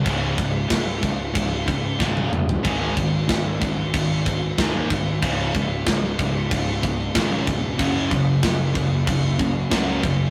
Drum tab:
CC |x-x-x-x-x-x-----|x-x-x-x-x-x-x-x-|x-x-x-x-x-x-x-x-|x-x-x-x-x-x-x-x-|
SD |----o-------o---|----o-------o---|----o-------o---|----o-------o---|
T1 |-------------o--|----------------|----------------|----------------|
T2 |--------------o-|----------------|----------------|----------------|
FT |---------------o|----------------|----------------|----------------|
BD |o-o-o-o-o-o-o---|o-o-o-o-o-o-o-o-|o-o-o-o-o-o-o-o-|o-o-o-o-o-o-o-o-|